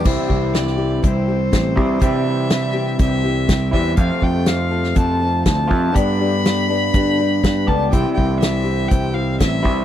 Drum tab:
CC |x---------------|----------------|----------------|----------------|
HH |----x---x---x---|x---x---x---x---|x---x---x---x---|x---x---x---x---|
SD |----oo------o---|----o-------o---|----o--o----o---|----o-------o---|
BD |o-o-----o---o-o-|o-------o---o-o-|o-o-----o---o-o-|o-------o---o-o-|

CC |----------------|
HH |x---x---x---x---|
SD |----o-------o---|
BD |o-o-----o---o-o-|